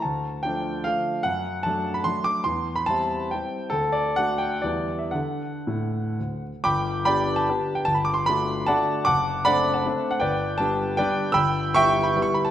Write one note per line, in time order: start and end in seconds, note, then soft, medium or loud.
0.02 0.43 D2 medium
0.02 0.43 A5 medium
0.43 0.83 F3 soft
0.43 0.83 A3 soft
0.43 0.83 D4 soft
0.43 0.85 G5 medium
0.84 1.21 F3 soft
0.84 1.21 A3 soft
0.84 1.22 D4 soft
0.84 1.24 F5 loud
1.23 1.64 F#2 medium
1.23 1.64 F#5 loud
1.63 2.03 F#3 soft
1.63 2.03 A3 soft
1.63 2.03 D4 medium
1.63 1.95 A5 loud
1.94 2.05 B5 medium
2.04 2.42 F#3 soft
2.04 2.42 A3 soft
2.04 2.42 D4 soft
2.04 2.25 C6 medium
2.24 2.45 D6 loud
2.44 2.86 E2 medium
2.44 2.76 C6 medium
2.76 2.87 B5 medium
2.86 3.28 G3 soft
2.86 3.28 C4 soft
2.86 3.29 E4 medium
2.86 3.31 A5 loud
3.31 3.70 G3 soft
3.31 3.70 C4 soft
3.31 3.70 E4 soft
3.31 3.73 G5 medium
3.70 4.15 D2 medium
3.70 3.93 A4 loud
3.92 4.16 D5 medium
4.16 4.62 A3 soft
4.16 4.62 D4 soft
4.16 4.62 F#4 medium
4.16 4.41 F#5 loud
4.38 4.64 G5 medium
4.62 5.12 E2 medium
4.62 5.09 G3 soft
4.62 5.10 B3 soft
4.62 5.10 E4 soft
4.62 5.00 D5 medium
4.99 5.13 E5 medium
5.11 5.51 D3 medium
5.11 5.56 D4 soft
5.11 5.56 A4 soft
5.11 6.42 F#5 medium
5.67 6.03 A2 medium
6.19 6.51 D2 soft
6.64 7.05 G1 medium
6.64 7.03 G5 medium
6.64 7.03 B5 medium
6.64 7.05 D6 loud
7.05 7.44 B3 medium
7.05 7.45 D4 medium
7.05 7.45 G4 medium
7.05 7.36 D5 medium
7.05 7.35 G5 medium
7.05 7.37 B5 loud
7.36 7.76 A5 loud
7.49 7.83 B3 medium
7.49 7.83 D4 medium
7.49 7.83 G4 medium
7.75 7.85 G5 medium
7.85 8.27 G1 medium
7.85 7.95 A5 loud
7.95 8.05 B5 medium
8.05 8.16 D6 medium
8.14 8.26 C6 medium
8.26 8.65 A3 medium
8.26 8.66 D4 medium
8.26 8.66 F#4 medium
8.26 8.68 B5 loud
8.66 9.03 A3 medium
8.66 9.03 D4 medium
8.66 9.04 F#4 medium
8.66 9.04 D5 medium
8.66 9.04 F#5 medium
8.66 9.05 A5 loud
9.05 9.45 F#1 medium
9.05 9.42 F#5 medium
9.05 9.43 A5 medium
9.05 9.45 D6 loud
9.45 9.81 A3 medium
9.45 9.81 C4 medium
9.45 9.81 D4 medium
9.45 9.73 D5 medium
9.45 9.73 F#5 medium
9.45 9.75 B5 loud
9.74 10.09 D5 medium
9.74 10.09 F#5 medium
9.74 10.11 A5 medium
9.86 10.18 A3 medium
9.86 10.18 C4 medium
9.86 10.19 D4 medium
10.11 10.20 F#5 medium
10.20 10.58 G1 medium
10.20 10.57 B4 medium
10.20 10.57 D5 medium
10.20 10.59 G5 medium
10.58 10.95 G3 medium
10.58 10.95 B3 medium
10.58 10.95 D4 medium
10.58 10.98 A5 loud
10.97 11.32 G3 medium
10.97 11.33 B3 medium
10.97 11.33 D4 medium
10.97 11.33 B4 medium
10.97 11.33 D5 medium
10.97 11.33 G5 loud
11.32 11.74 G1 medium
11.32 11.72 G5 medium
11.32 11.72 B5 loud
11.32 11.74 E6 loud
11.74 12.13 G3 medium
11.74 12.13 B3 medium
11.74 12.13 E4 medium
11.74 12.04 E5 loud
11.74 12.04 G5 loud
11.74 12.06 C#6 loud
12.03 12.25 B5 medium
12.16 12.51 G3 medium
12.16 12.51 B3 medium
12.16 12.51 E4 medium
12.22 12.34 C#6 loud
12.34 12.45 B5 medium
12.45 12.51 A5 medium